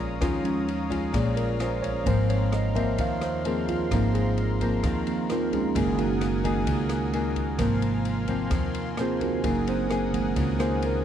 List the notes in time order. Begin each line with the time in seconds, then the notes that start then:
Already playing: A#1 A#2 F3 G#3 C#4 F4 A#4 C#5 F5 A#5 D#6
0.21 D#2 D#3 G#3 C#4 F4, kick, cross-stick, ride
0.43 F3 G#3 C#4, ride
0.68 ride
0.90 G#3 C#4 F4, kick, ride
1.13 A#1 A#2 G#4, kick, cross-stick, ride
1.37 A#4, ride
1.59 G#3 C#4 F4 C5, cross-stick, ride
1.82 C#5, kick, ride
2.04 G#1 G#2 F3 A#3 C4 A#4 C5 C6, kick, ride
2.29 C#5, ride
2.52 D#5, cross-stick, ride
2.75 F3 A#3 C4 E5, kick, ride
2.98 D#2 D#3 F5, kick, ride
3.21 C5, cross-stick, ride
3.45 F3 A#3 C4 G#4, ride
3.68 F4, kick, ride
3.91 G#1 G#2 F3 A#3 C4 D#4 A#5, kick, cross-stick, ride
4.14 G#4, ride
4.37 ride
4.60 F3 A#3 C4, kick, ride
4.83 D#2 D#3, kick, cross-stick, ride
5.06 F3 A#3 C4, ride
5.30 F3 A#3 C4 D#4 F4 A#4, cross-stick, ride
5.52 G#3 C#4 D#4 G#4, kick, ride
5.75 F#1 D#3 F#3 G#3 A#3 D#4 G#4 F#5 G#5 D#6, kick, ride
5.98 A#3 D#4 F#4 A#4, ride
6.21 cross-stick, ride
6.44 D#3 G#3 A#3 D#4 G#4, kick, ride
6.67 C#2 C#3, kick, ride
6.89 cross-stick, ride
7.13 A#3 D#4 G#4, ride
7.36 kick, ride
7.58 G#1 G#2 C3 F3 A#3 C4 F5 G#5 C6, kick, cross-stick, ride
7.82 ride
8.05 ride
8.28 F3 A#3 C4, kick, ride
8.50 D#2 D#3, kick, cross-stick, ride
8.74 ride
8.97 F3 A#3 C4 F4 G#4 C5, cross-stick, ride
9.21 A#3 D#4 F#4 A#4, kick, ride
9.44 F#1 F#3 A#3 D#4 G#4 A#4 F#5 D#6, kick, ride
9.67 C4 C5, ride
9.90 A#3 D#4 G#4, cross-stick, ride
10.12 D#3 G#3 A#3, kick, ride
10.36 C#2 C#3, kick, ride
10.59 A#3 D#4 G#4 C5, cross-stick, ride
10.82 A#4, ride